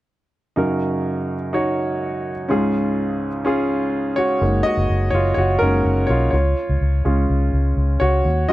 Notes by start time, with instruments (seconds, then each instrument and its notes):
0.56 grand piano F#2 C#3 D#4 F#4 A#4
1.53 grand piano D#4 F#4 C#5
2.48 grand piano C#2 G#2 C#4 F4 G#4
3.45 grand piano C#4 F4 G#4
4.16 grand piano F#4 C#5
4.41 fingered electric bass F#1, grand piano G#3 A#3 D#4
4.63 grand piano F#4 D#5
4.77 fingered electric bass F#1
4.90 fingered electric bass F#1
5.11 fingered electric bass F#1, grand piano C#5
5.15 grand piano F4
5.34 fingered electric bass F#1, grand piano F#4 C#5
5.59 fingered electric bass F#1, grand piano G#3 A#3 C#4 D#4 A#4
5.85 fingered electric bass F#1
6.07 fingered electric bass B1, grand piano F4 C#5
6.31 fingered electric bass C#2, grand piano F4 C#5
6.69 fingered electric bass C#2
6.81 fingered electric bass C#2
7.05 fingered electric bass C#2, grand piano G#3 C#4 F4
7.30 fingered electric bass C#2
7.53 fingered electric bass C#2
7.77 fingered electric bass C#2
8.00 fingered electric bass C#2, grand piano F#4 C#5
8.25 fingered electric bass D#2
8.48 grand piano F#3 C#4 F4 F#4 D#5